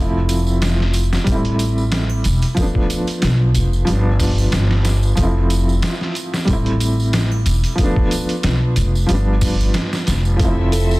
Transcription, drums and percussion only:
0.29 closed hi-hat, tambourine
0.47 tambourine
0.62 snare, closed hi-hat, tambourine
0.80 snare
0.94 closed hi-hat, tambourine
1.13 snare, tambourine
1.27 kick, closed hi-hat, tambourine
1.45 closed hi-hat
1.59 closed hi-hat, tambourine
1.78 tambourine
1.92 snare, closed hi-hat, tambourine
2.10 triangle
2.24 closed hi-hat, tambourine
2.42 closed hi-hat, tambourine, triangle
2.57 kick, closed hi-hat, tambourine
2.75 kick
2.90 closed hi-hat, tambourine
3.07 closed hi-hat, tambourine
3.22 snare, closed hi-hat, tambourine
3.55 closed hi-hat, tambourine
3.73 tambourine
3.87 closed hi-hat, tambourine
4.20 kick, open hi-hat, tambourine
4.38 tambourine, triangle
4.52 snare, closed hi-hat, tambourine
4.71 snare
4.85 snare, closed hi-hat, tambourine
5.03 tambourine
5.17 kick, closed hi-hat, tambourine
5.50 closed hi-hat, tambourine
5.69 tambourine
5.82 snare, closed hi-hat, tambourine
6.01 snare
6.15 closed hi-hat, tambourine
6.34 snare, tambourine
6.48 kick, closed hi-hat, tambourine
6.66 closed hi-hat
6.80 closed hi-hat, tambourine
7.00 tambourine
7.13 snare, closed hi-hat, tambourine
7.32 triangle
7.46 closed hi-hat, tambourine
7.64 closed hi-hat, tambourine, triangle
7.78 kick, closed hi-hat, tambourine
7.96 kick
8.11 closed hi-hat, tambourine
8.29 closed hi-hat, tambourine
8.43 snare, closed hi-hat, tambourine
8.76 closed hi-hat, tambourine
8.95 tambourine
9.09 closed hi-hat, tambourine
9.41 kick, open hi-hat, tambourine
9.60 tambourine, triangle
9.74 snare, closed hi-hat, tambourine
9.93 snare, tambourine
10.07 snare, closed hi-hat, tambourine
10.25 tambourine
10.40 kick, closed hi-hat, tambourine
10.72 closed hi-hat, tambourine
10.91 tambourine

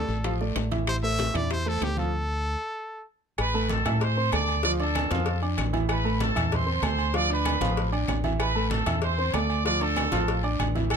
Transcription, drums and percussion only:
0.08 high bongo, high conga, short guiro
0.24 high bongo, high conga, high timbale, long guiro
0.41 high bongo, high conga
0.56 high bongo, low bongo, high conga, high timbale, short guiro, claves
0.71 high conga, high timbale, short guiro
0.87 high bongo, high conga, high timbale, long guiro, claves
1.03 high bongo, high conga
1.19 high bongo, high conga, high timbale, short guiro
1.34 high bongo, high conga, low conga, high timbale, short guiro, claves
1.50 high bongo, high conga, high timbale, long guiro
1.66 high bongo, high conga
1.81 high bongo, low bongo, high conga, high timbale, low timbale, short guiro, claves
1.97 high conga, short guiro
3.38 cowbell, high conga, low agogo, long guiro, claves
3.54 high conga
3.69 cowbell, high conga, low agogo, short guiro
3.85 cowbell, high conga, low conga, low agogo, short guiro, claves
4.01 cowbell, high conga, long guiro
4.17 high conga
4.32 cowbell, high conga, low timbale, low agogo, short guiro, claves
4.48 low agogo, short guiro
4.63 cowbell, high conga, long guiro
4.79 high conga, low agogo
4.95 cowbell, high conga, low agogo, short guiro, claves
5.11 cowbell, high conga, low agogo, short guiro
5.26 cowbell, high conga, long guiro
5.43 high conga, low agogo
5.58 cowbell, high conga, low agogo, short guiro, claves
5.73 high conga, low agogo, short guiro
5.89 cowbell, high conga, low agogo, long guiro, claves
6.05 high conga
6.20 cowbell, high conga, low agogo, short guiro
6.36 cowbell, high conga, low conga, low agogo, short guiro, claves
6.52 cowbell, high conga, low conga, long guiro
6.67 high conga
6.83 cowbell, high conga, low agogo, short guiro, claves
6.98 low agogo, short guiro
7.14 cowbell, high conga, long guiro
7.30 high conga, low agogo
7.45 cowbell, high conga, low agogo, short guiro, claves
7.61 cowbell, high conga, low agogo, short guiro
7.77 cowbell, high conga, long guiro
7.93 high conga, low agogo
8.08 cowbell, high conga, low timbale, low agogo, short guiro, claves
8.24 high conga, low agogo, short guiro
8.39 cowbell, high conga, low agogo, long guiro, claves
8.55 high conga
8.71 cowbell, high conga, low agogo, short guiro
8.86 cowbell, high conga, low conga, low agogo, short guiro, claves
9.02 cowbell, high conga, long guiro
9.18 high conga
9.33 cowbell, high conga, low timbale, low agogo, short guiro, claves
9.49 low agogo, short guiro
9.65 cowbell, high conga, long guiro
9.81 high conga, low agogo
9.96 cowbell, high conga, low agogo, short guiro, claves
10.12 cowbell, high conga, low agogo, short guiro
10.28 cowbell, high conga, long guiro
10.44 high conga, low agogo
10.60 cowbell, high conga, low agogo, short guiro, claves
10.75 high conga, low agogo, short guiro
10.90 cowbell, high conga, low agogo, long guiro, claves

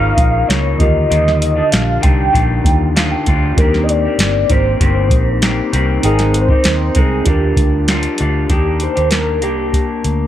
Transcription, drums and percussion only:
0.17 kick, closed hi-hat
0.50 snare, closed hi-hat
0.80 kick, closed hi-hat
1.12 closed hi-hat
1.28 snare
1.42 closed hi-hat
1.72 snare, closed hi-hat
2.03 kick, closed hi-hat
2.35 kick, closed hi-hat
2.65 kick, closed hi-hat
2.96 snare, closed hi-hat
3.26 kick, closed hi-hat
3.58 kick, closed hi-hat
3.74 snare
3.89 closed hi-hat
4.19 snare, closed hi-hat
4.50 kick, closed hi-hat
4.81 kick, closed hi-hat
5.10 kick, closed hi-hat
5.42 snare, closed hi-hat
5.73 closed hi-hat
6.03 closed hi-hat
6.19 snare, closed hi-hat
6.34 closed hi-hat
6.49 kick
6.64 snare, closed hi-hat
6.95 kick, closed hi-hat
7.26 kick, closed hi-hat
7.57 kick, closed hi-hat
7.88 snare, closed hi-hat
8.03 closed hi-hat
8.18 closed hi-hat
8.50 kick, closed hi-hat
8.80 closed hi-hat
8.97 closed hi-hat
9.11 snare, closed hi-hat
9.42 closed hi-hat
9.73 kick, closed hi-hat
10.04 closed hi-hat

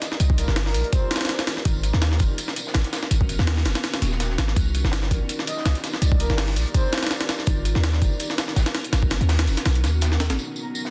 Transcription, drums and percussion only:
0.02 snare, closed hi-hat, tambourine
0.12 snare
0.20 closed hi-hat, tambourine
0.30 kick
0.38 closed hi-hat, tambourine
0.48 snare
0.56 snare, closed hi-hat, open hi-hat
0.66 snare
0.74 closed hi-hat, tambourine
0.84 closed hi-hat
0.93 kick, closed hi-hat, tambourine
1.11 snare, closed hi-hat, tambourine
1.16 snare, closed hi-hat
1.21 snare, closed hi-hat
1.25 snare, closed hi-hat
1.28 snare, closed hi-hat, tambourine
1.39 snare, closed hi-hat
1.47 snare, closed hi-hat, tambourine
1.57 snare
1.65 kick, closed hi-hat, tambourine
1.83 closed hi-hat, tambourine
1.93 snare
2.02 snare, closed hi-hat, tambourine
2.12 snare
2.19 kick, closed hi-hat, tambourine
2.38 closed hi-hat, tambourine
2.48 snare
2.56 closed hi-hat, tambourine
2.67 snare
2.74 snare, closed hi-hat, tambourine
2.84 snare, closed hi-hat
2.93 snare, closed hi-hat, tambourine
3.03 snare
3.11 closed hi-hat, tambourine
3.21 kick
3.29 closed hi-hat, tambourine
3.39 snare
3.47 snare, closed hi-hat, open hi-hat
3.56 snare
3.65 snare, closed hi-hat, tambourine
3.75 snare, closed hi-hat
3.83 snare, closed hi-hat, tambourine
3.94 snare, closed hi-hat
4.02 snare, closed hi-hat, tambourine
4.12 snare
4.20 snare, closed hi-hat, tambourine
4.30 snare
4.38 snare, closed hi-hat, tambourine
4.48 snare
4.56 kick, closed hi-hat, tambourine
4.75 closed hi-hat, tambourine
4.85 snare
4.92 snare, closed hi-hat, tambourine
5.02 snare
5.11 kick, closed hi-hat, tambourine
5.29 closed hi-hat, tambourine
5.39 snare
5.47 closed hi-hat, tambourine
5.57 snare
5.65 snare, closed hi-hat, tambourine
5.75 snare, closed hi-hat
5.84 snare, closed hi-hat, tambourine
5.93 snare
6.02 closed hi-hat, tambourine
6.12 kick
6.20 closed hi-hat, tambourine
6.30 snare
6.37 snare, closed hi-hat, open hi-hat
6.48 snare
6.56 closed hi-hat, tambourine
6.66 closed hi-hat
6.74 kick, closed hi-hat, tambourine
6.92 snare, closed hi-hat, tambourine
6.98 snare, closed hi-hat
7.02 snare, closed hi-hat
7.07 snare, closed hi-hat
7.10 snare, closed hi-hat, tambourine
7.21 snare, closed hi-hat
7.29 snare, closed hi-hat, tambourine
7.39 snare
7.47 kick, closed hi-hat, tambourine
7.65 closed hi-hat, tambourine
7.75 snare
7.84 snare, closed hi-hat, tambourine
7.93 snare
8.02 kick, closed hi-hat, tambourine
8.20 closed hi-hat, tambourine
8.30 snare
8.38 snare, closed hi-hat, tambourine
8.48 snare
8.56 snare, closed hi-hat, tambourine
8.66 snare, closed hi-hat
8.74 snare, closed hi-hat, tambourine
8.84 closed hi-hat
8.93 snare, closed hi-hat, tambourine
9.03 kick
9.10 snare, closed hi-hat, tambourine
9.21 closed hi-hat
9.29 snare, closed hi-hat, open hi-hat
9.39 snare, closed hi-hat
9.47 closed hi-hat, tambourine
9.57 snare, closed hi-hat
9.65 snare, closed hi-hat, tambourine
9.75 closed hi-hat
9.84 snare, closed hi-hat, tambourine
10.01 snare, closed hi-hat, tambourine
10.12 snare
10.20 snare, closed hi-hat, tambourine
10.30 snare, closed hi-hat
10.39 tambourine
10.56 tambourine
10.75 tambourine
10.85 snare

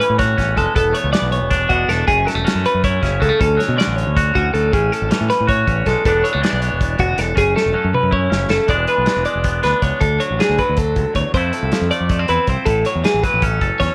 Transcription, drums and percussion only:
0.01 closed hi-hat
0.19 kick, snare, closed hi-hat
0.38 kick, snare, closed hi-hat
0.57 kick, closed hi-hat
0.76 kick, closed hi-hat
0.95 closed hi-hat
1.14 snare, closed hi-hat
1.32 closed hi-hat
1.51 kick, snare, closed hi-hat
1.70 kick, closed hi-hat
1.90 snare, closed hi-hat
2.08 kick, closed hi-hat
2.28 snare, closed hi-hat
2.47 snare, closed hi-hat
2.65 closed hi-hat
2.84 kick, closed hi-hat
3.03 kick, snare, closed hi-hat
3.22 kick, closed hi-hat
3.41 kick, closed hi-hat
3.60 snare, closed hi-hat
3.80 snare, closed hi-hat
3.98 closed hi-hat
4.17 kick, closed hi-hat
4.35 kick, closed hi-hat
4.55 closed hi-hat
4.73 kick, closed hi-hat
4.93 closed hi-hat
5.11 snare, closed hi-hat
5.30 snare, closed hi-hat
5.49 kick, closed hi-hat
5.67 kick, closed hi-hat
5.86 kick, snare, closed hi-hat
6.05 kick, closed hi-hat
6.25 closed hi-hat
6.44 snare, closed hi-hat
6.62 closed hi-hat
6.81 kick, closed hi-hat
6.99 kick, closed hi-hat
7.18 snare, closed hi-hat
7.37 kick, closed hi-hat
7.57 snare
7.94 mid tom
8.13 kick
8.32 snare
8.50 snare
8.68 kick, closed hi-hat
8.87 closed hi-hat
9.06 snare, closed hi-hat
9.25 closed hi-hat
9.44 kick, closed hi-hat
9.63 snare, closed hi-hat
9.82 kick, closed hi-hat
10.01 kick, closed hi-hat
10.20 closed hi-hat
10.40 snare, closed hi-hat
10.58 kick, closed hi-hat
10.76 kick, closed hi-hat
10.96 kick, closed hi-hat
11.15 kick, closed hi-hat
11.34 kick, closed hi-hat
11.53 closed hi-hat
11.72 snare, closed hi-hat
11.91 closed hi-hat
12.09 kick, closed hi-hat
12.28 closed hi-hat
12.47 kick, closed hi-hat
12.66 kick, closed hi-hat
12.85 closed hi-hat
13.04 snare, closed hi-hat
13.23 kick, closed hi-hat
13.42 kick, closed hi-hat
13.61 kick, closed hi-hat
13.80 kick, snare, closed hi-hat

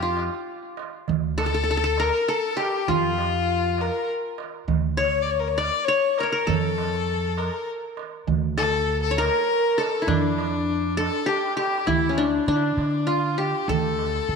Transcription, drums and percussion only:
0.17 darbuka tek
0.77 darbuka tek
1.08 darbuka dum
1.38 darbuka tek
1.68 darbuka ka
1.97 darbuka tek
2.58 darbuka tek
2.88 darbuka dum
3.18 darbuka tek
3.78 darbuka tek
4.38 darbuka tek
4.68 darbuka dum
4.98 darbuka tek
5.28 darbuka ka
5.58 darbuka tek
6.18 darbuka tek
6.48 darbuka dum
6.78 darbuka tek
7.08 darbuka ka
7.37 darbuka tek
7.97 darbuka tek
8.27 darbuka dum
8.58 darbuka tek
8.89 darbuka ka
9.19 darbuka tek
9.79 darbuka tek
10.09 darbuka dum
10.38 darbuka tek
10.70 darbuka ka
11.00 darbuka tek
11.31 darbuka tek
11.45 darbuka ka
11.59 darbuka tek
11.73 darbuka ka
11.88 darbuka dum
12.19 darbuka tek
12.78 darbuka tek
13.39 darbuka tek
13.69 darbuka dum
13.99 darbuka tek
14.30 darbuka ka

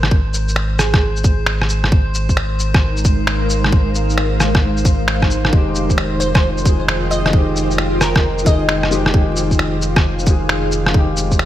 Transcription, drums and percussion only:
0.03 cross-stick
0.11 kick
0.34 shaker
0.48 shaker
0.56 finger snap
0.79 cross-stick, shaker
0.94 kick, cross-stick
1.16 shaker
1.24 kick, shaker
1.46 finger snap
1.62 cross-stick
1.69 shaker
1.84 cross-stick
1.92 kick
2.14 shaker
2.29 kick, shaker
2.37 finger snap
2.60 shaker
2.74 kick, cross-stick
2.97 shaker
3.05 kick, shaker
3.27 finger snap
3.50 shaker
3.64 cross-stick
3.72 kick
3.95 shaker
4.10 shaker
4.18 finger snap
4.40 cross-stick, shaker
4.55 kick, cross-stick
4.77 shaker
4.85 kick, shaker
5.08 finger snap
5.22 kick, cross-stick
5.30 shaker
5.45 cross-stick
5.53 kick
5.75 shaker
5.90 kick, shaker
5.98 finger snap
6.21 shaker
6.35 kick, cross-stick
6.58 shaker
6.66 kick, shaker
6.88 finger snap
7.11 shaker
7.26 cross-stick
7.33 kick
7.56 shaker
7.71 shaker
7.78 finger snap
8.01 cross-stick, shaker
8.16 kick, cross-stick
8.38 shaker
8.46 kick, shaker
8.69 finger snap
8.83 cross-stick
8.92 shaker
9.06 cross-stick
9.14 kick
9.36 shaker
9.51 kick, shaker
9.59 finger snap
9.82 shaker
9.96 kick, cross-stick
10.19 shaker
10.27 kick, shaker
10.49 finger snap
10.72 shaker
10.86 cross-stick
10.94 kick
11.17 shaker
11.31 kick, shaker
11.39 finger snap

